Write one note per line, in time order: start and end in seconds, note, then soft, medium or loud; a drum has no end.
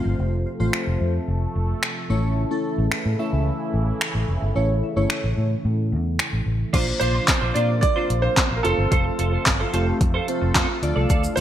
0.00 2.06 C3 medium
0.00 2.06 F3 medium
0.00 0.35 A3 medium
0.00 6.70 A3 medium
0.00 0.36 C4 medium
0.00 0.36 F4 medium
0.00 2.06 F4 medium
0.00 6.70 A4 medium
0.00 0.36 C5 loud
0.06 0.14 G1 medium
0.19 0.44 F1 medium
0.46 0.53 F4 medium
0.46 0.53 C5 medium
0.60 0.68 A1 medium
0.60 1.14 A3 medium
0.60 1.14 C4 medium
0.60 1.15 F4 medium
0.60 1.15 C5 loud
0.73 finger snap loud
0.87 0.96 F1 medium
1.01 1.18 F2 loud
1.28 1.45 F1 loud
1.55 1.72 F1 medium
1.83 finger snap loud
2.10 2.44 A1 medium
2.10 6.70 C#3 medium
2.10 6.70 E3 medium
2.10 2.43 A3 medium
2.10 2.43 C#4 medium
2.10 6.70 E4 medium
2.10 2.43 E4 medium
2.10 2.43 C#5 loud
2.51 2.85 A3 medium
2.51 2.85 C#4 medium
2.51 2.85 E4 medium
2.51 2.85 A4 medium
2.78 2.87 A1 medium
2.92 finger snap loud
3.06 3.14 A2 medium
3.19 3.74 A3 medium
3.19 3.74 C#4 medium
3.19 3.74 E4 medium
3.19 3.74 E5 medium
3.33 3.50 C#2 medium
3.74 3.91 A1 medium
4.01 finger snap loud
4.15 4.23 A1 medium
4.29 4.37 F1 medium
4.42 4.50 G1 medium
4.55 4.81 A1 loud
4.55 4.69 A3 medium
4.55 4.69 C#4 medium
4.55 4.69 E4 medium
4.55 4.69 C#5 medium
4.83 4.90 E4 medium
4.83 4.90 E5 loud
4.96 5.05 G1 medium
4.96 5.51 A3 medium
4.96 5.51 C#4 medium
4.96 5.51 E4 medium
4.96 5.51 C#5 loud
5.10 finger snap loud
5.24 5.32 A1 medium
5.38 5.54 A2 medium
5.65 5.94 A2 loud
5.92 6.17 E2 medium
6.19 finger snap loud
6.33 6.41 A1 medium
6.46 6.63 A1 medium
6.73 6.90 A#1 loud
6.73 8.63 C3 medium
6.73 11.40 F3 medium
6.73 7.14 A#3 medium
6.73 8.63 A#3 medium
6.73 6.94 D4 medium
6.73 8.63 D4 medium
6.73 7.15 D4 medium
6.73 10.79 F4 medium
6.73 7.15 F4 medium
6.73 6.87 F4 medium
6.73 7.15 C5 loud
6.73 6.86 C5 medium
6.73 kick loud
6.73 closed hi-hat medium
6.73 crash medium
6.87 muted clean electric guitar stroke soft
7.00 7.18 A#1 medium
7.00 7.15 D4 medium
7.00 7.14 F4 medium
7.00 7.56 C5 loud
7.00 7.13 C5 medium
7.00 closed hi-hat soft
7.14 7.27 D4 soft
7.14 7.27 F4 medium
7.14 7.28 C5 medium
7.28 muted clean electric guitar stroke soft
7.28 kick loud
7.28 snare medium
7.28 clap loud
7.28 closed hi-hat medium
7.41 7.50 A#1 medium
7.41 7.54 D4 medium
7.41 7.55 F4 medium
7.41 7.55 C5 medium
7.54 7.81 A#2 medium
7.54 7.76 A#3 medium
7.54 7.76 D4 medium
7.54 7.76 F4 medium
7.54 7.69 F4 loud
7.54 7.76 C5 medium
7.54 7.68 C5 medium
7.54 7.80 D5 loud
7.54 closed hi-hat medium
7.69 muted clean electric guitar stroke soft
7.81 8.24 D5 loud
7.81 muted clean electric guitar stroke soft
7.81 kick loud
7.81 closed hi-hat medium
7.96 8.44 A#3 medium
7.96 8.44 D4 medium
7.96 8.09 D4 medium
7.96 8.44 F4 medium
7.96 8.09 F4 medium
7.96 8.10 C5 medium
7.96 8.44 C5 medium
8.10 8.27 A#1 loud
8.10 muted clean electric guitar stroke soft
8.10 closed hi-hat medium
8.22 8.58 C5 loud
8.22 muted clean electric guitar stroke soft
8.37 muted clean electric guitar stroke soft
8.37 kick loud
8.37 snare medium
8.37 clap loud
8.37 closed hi-hat medium
8.51 8.59 A#1 medium
8.51 muted clean electric guitar stroke soft
8.56 8.64 A#4 medium
8.63 8.73 F1 loud
8.63 10.81 C3 medium
8.63 9.52 A3 medium
8.63 10.81 A3 medium
8.63 9.52 C4 medium
8.63 8.85 F4 medium
8.63 9.52 F4 medium
8.63 9.42 A4 loud
8.63 11.40 A4 medium
8.63 8.78 A4 medium
8.63 9.52 C5 medium
8.63 8.77 C5 medium
8.63 closed hi-hat soft
8.78 8.87 G1 medium
8.78 muted clean electric guitar stroke soft
8.91 9.09 F1 loud
8.91 9.12 F4 medium
8.91 9.05 A4 medium
8.91 9.04 C5 loud
8.91 kick loud
8.91 closed hi-hat medium
9.05 muted clean electric guitar stroke soft
9.19 9.36 F1 loud
9.19 9.33 F4 medium
9.19 9.32 A4 medium
9.19 9.31 C5 medium
9.19 closed hi-hat soft
9.33 9.45 F4 medium
9.33 9.46 A4 medium
9.33 9.46 C5 medium
9.46 9.63 G1 medium
9.46 muted clean electric guitar stroke soft
9.46 kick loud
9.46 snare medium
9.46 clap loud
9.46 closed hi-hat medium
9.60 9.72 F4 medium
9.60 9.73 A4 medium
9.60 9.74 C5 medium
9.73 9.90 F1 loud
9.73 10.01 A3 medium
9.73 10.01 C4 medium
9.73 9.94 F4 medium
9.73 10.01 F4 medium
9.73 10.01 G4 loud
9.73 9.87 A4 medium
9.73 9.86 C5 loud
9.73 closed hi-hat medium
9.87 muted clean electric guitar stroke soft
10.01 10.18 F2 loud
10.01 muted clean electric guitar stroke soft
10.01 kick loud
10.01 closed hi-hat medium
10.14 10.27 F4 medium
10.14 10.28 A4 medium
10.14 10.28 C5 medium
10.28 10.69 A3 medium
10.28 10.69 C4 medium
10.28 10.69 F4 medium
10.28 10.69 C5 medium
10.28 muted clean electric guitar stroke soft
10.28 closed hi-hat medium
10.42 10.50 F1 medium
10.42 muted clean electric guitar stroke soft
10.55 10.64 F2 loud
10.55 10.76 F4 medium
10.55 10.69 A4 medium
10.55 10.68 C5 medium
10.55 kick loud
10.55 snare medium
10.55 clap loud
10.55 closed hi-hat medium
10.69 muted clean electric guitar stroke medium
10.82 10.91 D2 loud
10.82 11.40 D3 medium
10.82 11.40 A3 medium
10.82 11.40 D4 medium
10.82 11.40 F4 medium
10.82 11.40 D5 loud
10.82 muted clean electric guitar stroke soft
10.82 closed hi-hat soft
10.96 11.05 C2 medium
10.96 11.08 F4 medium
10.96 11.09 A4 medium
10.96 11.10 D5 medium
11.09 11.27 D2 loud
11.09 11.30 F4 medium
11.09 11.23 A4 medium
11.09 11.22 D5 medium
11.09 kick loud
11.09 closed hi-hat medium
11.09 shaker medium
11.23 muted clean electric guitar stroke soft
11.23 shaker medium
11.36 11.40 D2 medium
11.36 11.40 F4 medium
11.36 11.40 C5 loud
11.36 closed hi-hat soft
11.36 shaker medium